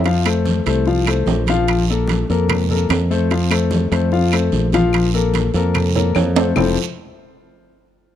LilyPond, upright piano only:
\new Staff \with { instrumentName = "Upright piano" } { \time 4/4 \key bes \lydian \tempo 4 = 147 <f f' f''>8 <a a' c''>4 <a a' c''>8 <f f' f''>8 <a a' c''>4 <f f' f''>8~ | <f f' f''>8 <bes a' bes'>4 <bes a' bes'>4 <bes a' bes'>4 <a a' c''>8 | <f f' f''>8 <a a' c''>4 <a a' c''>8 <f f' f''>8 <a a' c''>4 <f f' f''>8~ | <f f' f''>8 <bes a' bes'>4 <bes a' bes'>4 <bes a' bes'>4 <a a' c''>8 |
<f c' e' f' a' c''>8 r2. r8 | }